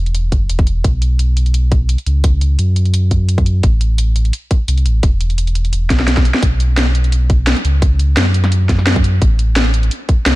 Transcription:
Already playing: E1
0.06 closed hi-hat
0.15 closed hi-hat
0.32 F#1, kick, closed hi-hat
0.49 E1, closed hi-hat
0.59 kick, closed hi-hat
0.67 closed hi-hat
0.84 B1, kick, closed hi-hat
1.02 closed hi-hat
1.19 closed hi-hat
1.37 closed hi-hat
1.46 closed hi-hat
1.54 closed hi-hat
1.72 kick, closed hi-hat
1.89 closed hi-hat
1.98 closed hi-hat
2.06 C#2, closed hi-hat
2.24 kick, closed hi-hat
2.41 closed hi-hat
2.59 F#2, closed hi-hat
2.76 closed hi-hat
2.85 closed hi-hat
2.94 closed hi-hat
3.11 kick, closed hi-hat
3.29 closed hi-hat
3.38 kick, closed hi-hat
3.46 closed hi-hat
3.63 A1, kick, closed hi-hat
3.81 closed hi-hat
3.98 closed hi-hat
4.16 closed hi-hat
4.25 closed hi-hat
4.33 closed hi-hat
4.51 kick, closed hi-hat
4.68 C2, closed hi-hat
4.78 closed hi-hat
4.86 A1, closed hi-hat
5.03 E1, kick, closed hi-hat
5.21 closed hi-hat
5.30 closed hi-hat
5.38 closed hi-hat
5.47 closed hi-hat
5.55 closed hi-hat
5.65 closed hi-hat
5.73 E1, closed hi-hat
5.90 B1, kick, snare, closed hi-hat
6.00 snare
6.08 snare, closed hi-hat
6.17 kick, snare, closed hi-hat
6.25 closed hi-hat
6.35 snare
6.43 B1, kick, closed hi-hat
6.60 closed hi-hat
6.78 snare, closed hi-hat
6.95 closed hi-hat
7.04 closed hi-hat
7.12 closed hi-hat
7.30 kick, closed hi-hat
7.47 snare, closed hi-hat
7.57 snare, closed hi-hat
7.65 C#2, closed hi-hat
7.82 kick, closed hi-hat
7.99 closed hi-hat
8.17 F#2, snare, closed hi-hat
8.34 closed hi-hat
8.44 snare, closed hi-hat
8.52 closed hi-hat
8.69 kick, snare, closed hi-hat
8.79 snare
8.87 snare, closed hi-hat
8.96 kick, snare, closed hi-hat
9.04 closed hi-hat
9.22 A1, kick, closed hi-hat
9.39 closed hi-hat
9.56 snare, closed hi-hat
9.74 closed hi-hat
9.83 closed hi-hat
9.91 closed hi-hat
10.09 kick, closed hi-hat
10.26 C2, snare, closed hi-hat

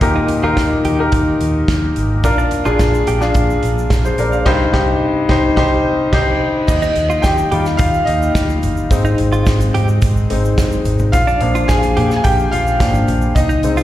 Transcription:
0.01 D#2 A#2 D#3 D#4 G4 A#4, kick, closed hi-hat
0.16 D#4
0.28 closed hi-hat, floor tom
0.43 D#2 D#4 F4 G4 A#4
0.57 D#2, kick, snare, closed hi-hat
0.85 D#2 G4, closed hi-hat, floor tom
0.99 D#4 G4 A#4
1.12 D#2, kick, closed hi-hat
1.41 D#2, closed hi-hat
1.68 D#2, kick, snare, closed hi-hat
1.96 G#1, closed hi-hat
2.24 A#1 A#3 D4 F4 A#4, kick, closed hi-hat, shaker
2.38 D4, shaker
2.51 closed hi-hat, floor tom, shaker
2.65 A#1 D4 F4 G#4, shaker
2.79 A#1, kick, snare, closed hi-hat, shaker
2.94 shaker
3.07 A#1 G4, closed hi-hat, shaker
3.21 D4 F4 G#4, snare, shaker
3.34 A#1, kick, closed hi-hat, shaker
3.50 shaker
3.63 A#1, closed hi-hat, shaker
3.78 shaker
3.90 A#1, kick, snare, closed hi-hat, shaker
4.05 G#4 C5, shaker
4.18 A#1 A#4 D5, closed hi-hat, shaker
4.32 D5 F5, shaker
4.46 C2 G2 C3 C4 D#4 G4 C5, kick, snare, crash
4.73 C2 D#4 G4, kick, snare
5.29 C2 D#4 G4 C5, kick, snare
5.56 C2 D#4 G4 C5, kick, snare
6.13 C2 D#4 G4 C5, kick, snare, crash
6.67 D#2 D#3 A#3 D#4 F4 G4 D#5, kick, crash, shaker
6.82 D#4, shaker
6.96 D#2, closed hi-hat
7.10 F4, shaker
7.22 D#2 G4 G5, kick, snare, closed hi-hat, shaker
7.38 shaker
7.51 D#3 G3 D#4 F4 G4, closed hi-hat, floor tom
7.65 snare, shaker
7.77 D#2 F4 F5, kick, closed hi-hat, shaker
7.94 shaker
8.05 D#2 D#4 D#5, closed hi-hat
8.22 shaker
8.35 D2, kick, snare, closed hi-hat, shaker
8.49 shaker
8.63 G1, closed hi-hat, floor tom, shaker
8.77 shaker
8.90 G#1 G#3 C4 D#4, kick, closed hi-hat, shaker
9.05 D#4, shaker
9.18 G#1, closed hi-hat
9.33 F4, shaker
9.46 G#1, kick, snare, closed hi-hat, shaker
9.61 closed hi-hat, shaker
9.74 G#2 G4, closed hi-hat, floor tom
9.88 shaker
10.02 G#1, kick, closed hi-hat, shaker
10.16 shaker
10.30 G#1 G#3 C4 D#4, closed hi-hat
10.45 shaker
10.58 G1, kick, snare, closed hi-hat, shaker
10.72 shaker
10.85 G#1, closed hi-hat, floor tom, shaker
10.99 floor tom, shaker
11.12 A#1 F3 A#3 D4 F4 F5, kick, closed hi-hat, shaker
11.27 D4, shaker
11.41 A#1 F3 A#3 D4, closed hi-hat
11.55 F4, closed hi-hat, shaker
11.68 A#1 G#4 G#5, kick, snare, closed hi-hat, shaker
11.83 closed hi-hat, shaker
11.97 A#2 G4, closed hi-hat, floor tom
12.11 snare, shaker
12.16 G#5
12.24 A#1 G4 G5, kick, closed hi-hat, shaker
12.39 shaker
12.51 A#1 F4 F5, closed hi-hat
12.67 shaker
12.80 G#1 F3 A#3 D4, kick, snare, closed hi-hat, shaker
12.94 shaker
13.08 A#1, closed hi-hat, floor tom, shaker
13.21 shaker
13.35 C2 C3 G#3 C4 D#4 D#5, kick, closed hi-hat, shaker
13.49 D#4, shaker
13.63 C2 G#3 C4 D#4, closed hi-hat, shaker
13.77 F4, closed hi-hat, shaker

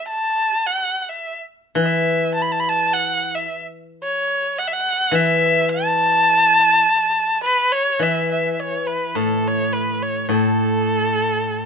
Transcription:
0.08 A5
0.66 F#5
1.02 F#5
1.09 E5
1.75 E3
1.84 E5
2.34 A5
2.42 B5
2.52 A5
2.60 B5
2.69 A5
2.94 F#5
3.35 E5
4.03 C#5
4.59 F#5
4.67 E5
4.73 F#5
5.11 E3 E5
5.69 A5
7.43 B4
7.72 C#5
7.99 E3 E5
8.32 E5
8.53 E5
8.60 C#5
8.87 B4
9.15 A2 A4
9.47 C#5
9.73 B4
10.02 C#5
10.29 A2 A4

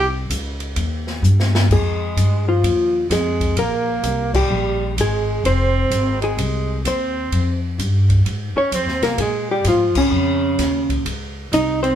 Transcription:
Already playing: C2
0.29 C#2, kick, hi-hat pedal, ride
0.60 ride
0.76 D#2, kick, ride
1.07 snare
1.22 G2, hi-hat pedal
1.40 snare
1.55 snare
1.70 F2 G#3 G#4, kick, crash
2.16 G2, kick, hi-hat pedal, ride
2.48 F3 F4
2.63 D#2, kick, ride
3.10 F2 G#3 G#4, kick, snare, hi-hat pedal, ride
3.40 kick, ride
3.56 A#1 A#3 A#4, kick, ride
4.03 C2, kick, hi-hat pedal, ride
4.34 G3 G4, kick, crash
4.49 A#1
4.97 G#1 G#3 G#4, kick, hi-hat pedal, ride
5.44 F1 C4 C5, kick, ride
5.90 G#1, kick, hi-hat pedal, ride
6.22 G#3 G#4, ride
6.37 C2, kick, ride
6.84 D#2 C4 C5, kick, hi-hat pedal, ride
7.32 F2, kick, ride
7.78 G2, kick, hi-hat pedal, ride
8.09 kick, ride
8.25 G#2, kick, ride
8.54 C#4 C#5, muted upright bass stroke
8.71 F2 C4 C5, kick, hi-hat pedal, ride
8.86 D#2, snare
9.01 C2 A#3 A#4, snare, ride
9.18 A#2 G#3 G#4, kick, ride
9.51 G3 G4
9.64 G#2 F3, kick, snare, hi-hat pedal, ride
9.69 F4
9.95 C#3 C#4, muted upright bass stroke, kick, crash
10.11 F2
10.58 D#2, kick, snare, hi-hat pedal, ride
10.89 kick, ride
11.05 C#2, kick, ride
11.52 C2 D#4 D#5, kick, hi-hat pedal, ride
11.83 C4 C5, ride

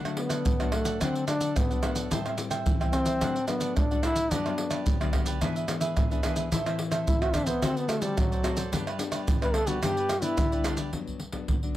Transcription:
Already playing: D3
0.05 F#3 A3 D4 A4 D5 F#5, pandeiro, tamborim, maracas
0.17 B3, muted cavaquinho stroke, pandeiro
0.29 A4 D5 F#5, pandeiro, tamborim, maracas
0.45 A2, pandeiro, maracas, surdo
0.60 F#3 A3 D4 A4 D5 F#5, pandeiro, tamborim, maracas
0.72 A3 D4 A4 D5 F#5, pandeiro, tamborim
0.85 A4 D5 F#5, pandeiro, maracas
1.01 D3 F#3 A3 C4 D4 A4 D5 F#5, pandeiro, tamborim, maracas, surdo
1.15 A4 D5 F#5, pandeiro, maracas
1.27 F#3 A3 D4, muted cavaquinho stroke, pandeiro, tamborim, maracas
1.41 A4 D5 F#5, pandeiro, maracas
1.56 A2 B3, pandeiro, tamborim, maracas, surdo
1.70 F#3 A3 D4 A4 D5 F#5, pandeiro, maracas
1.82 F#3 A3 D4 A4 D5 F#5, pandeiro, tamborim, maracas
1.95 A4 D5 F#5, pandeiro, maracas
2.10 A2 G3 C4 E4 A4 C5 E5 G5, pandeiro, maracas, surdo
2.25 G3 C4 E4 C5 E5 G5, pandeiro, tamborim, maracas
2.37 G3 C4 E4, muted cavaquinho stroke, pandeiro, maracas
2.50 C5 E5 G5, pandeiro, tamborim, maracas
2.66 E3, pandeiro, maracas, surdo
2.80 G3 C4 E4 C5 E5 G5, pandeiro, tamborim, maracas
2.93 C4 A4 C5 E5 G5, pandeiro, tamborim, maracas
3.05 C5 E5 G5, pandeiro, maracas
3.21 A2 F#3 A3 D4 A4 D5 F#5, pandeiro, tamborim, maracas, surdo
3.36 A4 D5 F#5, pandeiro, maracas
3.48 F#3 A3 B3 D4, muted cavaquinho stroke, pandeiro, tamborim, maracas
3.60 A4 D5 F#5, pandeiro, maracas
3.76 A2 D4, pandeiro, tamborim, maracas, surdo
3.91 F#3 A3 D4 A4 D5 F#5, pandeiro, maracas
4.03 F#3 A3 D4 E4 A4 D5 F#5, pandeiro, tamborim, maracas
4.16 A4 D5 F#5, pandeiro, maracas
4.31 G2 F#3 B3 D4 F#4 G4 B4 D5, pandeiro, maracas, surdo
4.45 F#3 B3 D4 G4 B4 D5, pandeiro, tamborim, maracas
4.58 muted cavaquinho stroke, pandeiro
4.70 G4 B4 D5, pandeiro, tamborim, maracas
4.86 D3, pandeiro, maracas, surdo
5.00 F#3 B3 D4 G4 B4 D5, pandeiro, tamborim, maracas
5.13 F#4 G4 B4 D5, pandeiro, tamborim, surdo
5.25 G4 B4 D5, pandeiro, maracas
5.41 G#2 E3 B3 D4 G#4 B4 E5, pandeiro, tamborim, maracas, surdo
5.56 G#4 B4 E5, pandeiro, maracas
5.68 E3 B3 D4, muted cavaquinho stroke, pandeiro, tamborim, maracas
5.80 G#4 B4 E5, pandeiro, maracas
5.96 G#2, pandeiro, tamborim, maracas, surdo
6.10 E3 B3 D4 G#4 B4 E5, pandeiro, maracas
6.23 E3 B3 D4 G#4 B4 E5, pandeiro, tamborim, maracas
6.36 G#4 B4 E5, pandeiro, maracas
6.51 A2 E3 C4 E4 A4 C5 E5, pandeiro, maracas, surdo
6.66 E3 C4 E4 A4 C5 E5, pandeiro, tamborim, maracas
6.78 muted cavaquinho stroke, pandeiro
6.91 A4 C5 E5, pandeiro, tamborim, maracas
7.06 E3 E4, pandeiro, maracas, surdo
7.21 E3 C4 E4 F#4 A4 C5 E5, pandeiro, tamborim, maracas
7.33 D4 E4 A4 C5 E5, pandeiro, tamborim, maracas, surdo
7.46 B3 A4 C5 E5, pandeiro, maracas
7.62 D3 A3 C4 F#4 A4 C5 D5, pandeiro, tamborim, maracas, surdo
7.76 B3 A4 C5 D5, pandeiro, maracas
7.88 A3 C4 F#4, muted cavaquinho stroke, pandeiro, tamborim, maracas
8.02 G3 A4 C5 D5, pandeiro, maracas
8.17 A2 F#3, pandeiro, tamborim, maracas, surdo
8.32 A4 C5 D5, pandeiro, maracas
8.43 A3 C4 F#4 A4 C5 D5, pandeiro, tamborim, maracas
8.57 A4 C5 D5, pandeiro, maracas
8.71 G2 G3 B3 D4 G4 B4 D5, pandeiro, maracas, surdo
8.87 G4 B4 D5, pandeiro, tamborim, maracas
8.98 G3 B3 D4, muted cavaquinho stroke, pandeiro, maracas
9.12 G4 B4 D5, pandeiro, tamborim, maracas
9.27 D3, pandeiro, maracas, surdo
9.41 G3 B3 D4 G4 B4 D5, pandeiro, tamborim, maracas
9.54 D4 G4 A4 B4 D5, pandeiro, tamborim
9.66 G3 B3 D4 F#4 G4 B4 D5, pandeiro, maracas
9.82 G2 G3 B3 D4 G4 B4 D5, pandeiro, tamborim, maracas, surdo
9.97 G4 B4 D5, pandeiro, maracas
10.09 muted cavaquinho stroke, pandeiro, tamborim, maracas
10.21 G3 B3 D4 E4 G4 B4 D5, pandeiro, maracas
10.38 D3, pandeiro, tamborim, maracas, surdo
10.52 G3 B3 D4 G4 B4 D5, pandeiro, maracas
10.64 D4 G4 B4 D5, pandeiro, tamborim, maracas
10.77 G4 B4 D5, pandeiro, maracas
10.93 G2 F#3 B3 D4, pandeiro, surdo
11.07 pandeiro, surdo
11.20 pandeiro
11.32 F#3 B3 D4, pandeiro, surdo
11.48 D3, pandeiro, surdo
11.63 F#3 B3 D4, pandeiro

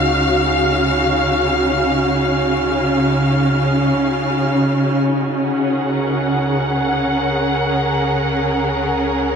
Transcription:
Already playing: C#2 C#3 C#4 D#4 F#4 F5 F6
4.98 C#2
5.44 G#4 F#5
5.69 A#4

